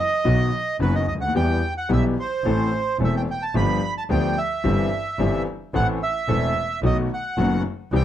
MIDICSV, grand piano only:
0, 0, Header, 1, 2, 480
1, 0, Start_track
1, 0, Tempo, 548446
1, 1181, Time_signature, 4, 2, 24, 8
1, 7042, End_track
2, 0, Start_track
2, 0, Title_t, "Grand piano"
2, 0, Program_c, 0, 0
2, 212, Note_on_c, 0, 51, 63
2, 215, Note_on_c, 0, 54, 54
2, 217, Note_on_c, 0, 35, 69
2, 217, Note_on_c, 0, 47, 72
2, 218, Note_on_c, 0, 59, 56
2, 219, Note_on_c, 0, 66, 70
2, 416, Note_off_c, 0, 51, 0
2, 417, Note_off_c, 0, 54, 0
2, 419, Note_off_c, 0, 35, 0
2, 419, Note_off_c, 0, 47, 0
2, 419, Note_off_c, 0, 59, 0
2, 419, Note_off_c, 0, 66, 0
2, 697, Note_on_c, 0, 30, 67
2, 697, Note_on_c, 0, 54, 53
2, 699, Note_on_c, 0, 59, 51
2, 701, Note_on_c, 0, 42, 66
2, 701, Note_on_c, 0, 51, 58
2, 702, Note_on_c, 0, 66, 66
2, 900, Note_off_c, 0, 30, 0
2, 900, Note_off_c, 0, 54, 0
2, 901, Note_off_c, 0, 59, 0
2, 902, Note_off_c, 0, 42, 0
2, 902, Note_off_c, 0, 51, 0
2, 903, Note_off_c, 0, 66, 0
2, 1005, Note_on_c, 0, 37, 42
2, 1054, Note_on_c, 0, 38, 51
2, 1063, Note_off_c, 0, 37, 0
2, 1117, Note_off_c, 0, 38, 0
2, 1119, Note_on_c, 0, 39, 62
2, 1180, Note_off_c, 0, 39, 0
2, 1180, Note_on_c, 0, 52, 74
2, 1180, Note_on_c, 0, 55, 59
2, 1181, Note_on_c, 0, 59, 55
2, 1184, Note_on_c, 0, 40, 76
2, 1187, Note_on_c, 0, 67, 70
2, 1383, Note_off_c, 0, 55, 0
2, 1384, Note_off_c, 0, 52, 0
2, 1384, Note_off_c, 0, 59, 0
2, 1385, Note_off_c, 0, 40, 0
2, 1386, Note_off_c, 0, 67, 0
2, 1652, Note_on_c, 0, 52, 61
2, 1655, Note_on_c, 0, 35, 74
2, 1656, Note_on_c, 0, 47, 71
2, 1656, Note_on_c, 0, 55, 60
2, 1657, Note_on_c, 0, 59, 54
2, 1658, Note_on_c, 0, 67, 68
2, 1860, Note_off_c, 0, 52, 0
2, 1862, Note_off_c, 0, 35, 0
2, 1862, Note_off_c, 0, 47, 0
2, 1862, Note_off_c, 0, 55, 0
2, 1863, Note_off_c, 0, 59, 0
2, 1863, Note_off_c, 0, 67, 0
2, 2145, Note_on_c, 0, 52, 60
2, 2148, Note_on_c, 0, 33, 71
2, 2148, Note_on_c, 0, 57, 52
2, 2149, Note_on_c, 0, 45, 73
2, 2150, Note_on_c, 0, 69, 69
2, 2153, Note_on_c, 0, 60, 54
2, 2349, Note_off_c, 0, 52, 0
2, 2350, Note_off_c, 0, 33, 0
2, 2350, Note_off_c, 0, 57, 0
2, 2351, Note_off_c, 0, 45, 0
2, 2351, Note_off_c, 0, 69, 0
2, 2352, Note_off_c, 0, 60, 0
2, 2626, Note_on_c, 0, 40, 67
2, 2627, Note_on_c, 0, 57, 53
2, 2630, Note_on_c, 0, 52, 57
2, 2632, Note_on_c, 0, 60, 55
2, 2633, Note_on_c, 0, 28, 65
2, 2633, Note_on_c, 0, 69, 65
2, 2830, Note_off_c, 0, 40, 0
2, 2830, Note_off_c, 0, 57, 0
2, 2831, Note_off_c, 0, 52, 0
2, 2832, Note_off_c, 0, 60, 0
2, 2833, Note_off_c, 0, 28, 0
2, 2833, Note_off_c, 0, 69, 0
2, 3107, Note_on_c, 0, 53, 63
2, 3108, Note_on_c, 0, 59, 60
2, 3110, Note_on_c, 0, 31, 73
2, 3111, Note_on_c, 0, 62, 59
2, 3111, Note_on_c, 0, 67, 68
2, 3112, Note_on_c, 0, 43, 72
2, 3310, Note_off_c, 0, 53, 0
2, 3310, Note_off_c, 0, 59, 0
2, 3311, Note_off_c, 0, 31, 0
2, 3311, Note_off_c, 0, 62, 0
2, 3312, Note_off_c, 0, 43, 0
2, 3312, Note_off_c, 0, 67, 0
2, 3583, Note_on_c, 0, 59, 58
2, 3585, Note_on_c, 0, 53, 62
2, 3588, Note_on_c, 0, 62, 57
2, 3588, Note_on_c, 0, 67, 68
2, 3589, Note_on_c, 0, 50, 77
2, 3590, Note_on_c, 0, 38, 70
2, 3787, Note_off_c, 0, 59, 0
2, 3788, Note_off_c, 0, 53, 0
2, 3789, Note_off_c, 0, 62, 0
2, 3789, Note_off_c, 0, 67, 0
2, 3790, Note_off_c, 0, 38, 0
2, 3790, Note_off_c, 0, 50, 0
2, 4060, Note_on_c, 0, 31, 72
2, 4060, Note_on_c, 0, 52, 61
2, 4061, Note_on_c, 0, 55, 55
2, 4063, Note_on_c, 0, 60, 59
2, 4064, Note_on_c, 0, 67, 69
2, 4067, Note_on_c, 0, 43, 74
2, 4263, Note_off_c, 0, 52, 0
2, 4264, Note_off_c, 0, 31, 0
2, 4264, Note_off_c, 0, 55, 0
2, 4265, Note_off_c, 0, 60, 0
2, 4266, Note_off_c, 0, 67, 0
2, 4267, Note_off_c, 0, 43, 0
2, 4542, Note_on_c, 0, 55, 56
2, 4544, Note_on_c, 0, 52, 61
2, 4545, Note_on_c, 0, 43, 71
2, 4546, Note_on_c, 0, 31, 74
2, 4548, Note_on_c, 0, 60, 57
2, 4552, Note_on_c, 0, 67, 66
2, 4743, Note_off_c, 0, 55, 0
2, 4744, Note_off_c, 0, 52, 0
2, 4745, Note_off_c, 0, 31, 0
2, 4745, Note_off_c, 0, 43, 0
2, 4746, Note_off_c, 0, 60, 0
2, 4748, Note_off_c, 0, 67, 0
2, 5023, Note_on_c, 0, 52, 67
2, 5024, Note_on_c, 0, 57, 62
2, 5025, Note_on_c, 0, 33, 76
2, 5026, Note_on_c, 0, 60, 58
2, 5027, Note_on_c, 0, 45, 77
2, 5028, Note_on_c, 0, 69, 69
2, 5222, Note_off_c, 0, 52, 0
2, 5222, Note_off_c, 0, 57, 0
2, 5223, Note_off_c, 0, 33, 0
2, 5223, Note_off_c, 0, 60, 0
2, 5224, Note_off_c, 0, 45, 0
2, 5225, Note_off_c, 0, 69, 0
2, 5498, Note_on_c, 0, 40, 75
2, 5498, Note_on_c, 0, 52, 64
2, 5500, Note_on_c, 0, 57, 60
2, 5502, Note_on_c, 0, 28, 77
2, 5503, Note_on_c, 0, 69, 71
2, 5504, Note_on_c, 0, 60, 57
2, 5699, Note_off_c, 0, 40, 0
2, 5699, Note_off_c, 0, 52, 0
2, 5700, Note_off_c, 0, 57, 0
2, 5701, Note_off_c, 0, 28, 0
2, 5701, Note_off_c, 0, 69, 0
2, 5702, Note_off_c, 0, 60, 0
2, 5977, Note_on_c, 0, 51, 63
2, 5979, Note_on_c, 0, 47, 75
2, 5979, Note_on_c, 0, 57, 58
2, 5980, Note_on_c, 0, 35, 73
2, 5981, Note_on_c, 0, 66, 75
2, 5982, Note_on_c, 0, 59, 60
2, 6178, Note_off_c, 0, 47, 0
2, 6178, Note_off_c, 0, 51, 0
2, 6179, Note_off_c, 0, 35, 0
2, 6179, Note_off_c, 0, 57, 0
2, 6180, Note_off_c, 0, 59, 0
2, 6180, Note_off_c, 0, 66, 0
2, 6455, Note_on_c, 0, 51, 58
2, 6456, Note_on_c, 0, 30, 69
2, 6456, Note_on_c, 0, 57, 55
2, 6457, Note_on_c, 0, 66, 67
2, 6459, Note_on_c, 0, 59, 54
2, 6461, Note_on_c, 0, 42, 73
2, 6656, Note_off_c, 0, 51, 0
2, 6657, Note_off_c, 0, 30, 0
2, 6657, Note_off_c, 0, 57, 0
2, 6657, Note_off_c, 0, 66, 0
2, 6658, Note_off_c, 0, 59, 0
2, 6659, Note_off_c, 0, 42, 0
2, 6935, Note_on_c, 0, 52, 62
2, 6939, Note_on_c, 0, 48, 75
2, 6939, Note_on_c, 0, 55, 59
2, 6939, Note_on_c, 0, 60, 61
2, 6942, Note_on_c, 0, 36, 75
2, 6943, Note_on_c, 0, 67, 73
2, 7042, Note_off_c, 0, 36, 0
2, 7042, Note_off_c, 0, 48, 0
2, 7042, Note_off_c, 0, 52, 0
2, 7042, Note_off_c, 0, 55, 0
2, 7042, Note_off_c, 0, 60, 0
2, 7042, Note_off_c, 0, 67, 0
2, 7042, End_track
0, 0, End_of_file